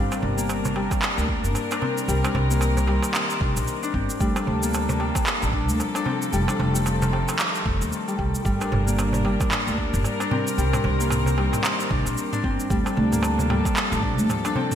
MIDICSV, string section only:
0, 0, Header, 1, 2, 480
1, 0, Start_track
1, 0, Key_signature, -2, "minor"
1, 0, Tempo, 530973
1, 1884, Time_signature, 4, 2, 24, 8
1, 13334, End_track
2, 0, Start_track
2, 0, Title_t, "String section"
2, 0, Program_c, 0, 48
2, 0, Note_on_c, 0, 55, 75
2, 0, Note_on_c, 0, 58, 68
2, 0, Note_on_c, 0, 62, 67
2, 0, Note_on_c, 0, 70, 83
2, 1865, Note_off_c, 0, 58, 0
2, 1865, Note_off_c, 0, 62, 0
2, 1880, Note_on_c, 0, 51, 71
2, 1883, Note_on_c, 0, 60, 67
2, 3768, Note_off_c, 0, 55, 0
2, 3768, Note_off_c, 0, 70, 0
2, 3783, Note_off_c, 0, 51, 0
2, 3785, Note_off_c, 0, 60, 0
2, 3804, Note_on_c, 0, 53, 76
2, 3804, Note_on_c, 0, 58, 72
2, 3805, Note_on_c, 0, 69, 80
2, 3806, Note_on_c, 0, 62, 67
2, 5705, Note_off_c, 0, 58, 0
2, 5706, Note_off_c, 0, 62, 0
2, 5718, Note_on_c, 0, 60, 67
2, 5722, Note_on_c, 0, 51, 70
2, 7608, Note_off_c, 0, 53, 0
2, 7609, Note_off_c, 0, 69, 0
2, 7622, Note_off_c, 0, 60, 0
2, 7624, Note_off_c, 0, 51, 0
2, 7646, Note_on_c, 0, 62, 72
2, 7649, Note_on_c, 0, 55, 77
2, 7649, Note_on_c, 0, 70, 81
2, 7650, Note_on_c, 0, 58, 68
2, 9546, Note_off_c, 0, 62, 0
2, 9548, Note_off_c, 0, 58, 0
2, 9562, Note_on_c, 0, 51, 72
2, 9563, Note_on_c, 0, 60, 74
2, 11450, Note_off_c, 0, 55, 0
2, 11450, Note_off_c, 0, 70, 0
2, 11464, Note_off_c, 0, 51, 0
2, 11464, Note_off_c, 0, 60, 0
2, 11483, Note_on_c, 0, 58, 72
2, 11483, Note_on_c, 0, 69, 85
2, 11485, Note_on_c, 0, 53, 77
2, 11485, Note_on_c, 0, 62, 72
2, 13334, Note_off_c, 0, 53, 0
2, 13334, Note_off_c, 0, 58, 0
2, 13334, Note_off_c, 0, 62, 0
2, 13334, Note_off_c, 0, 69, 0
2, 13334, End_track
0, 0, End_of_file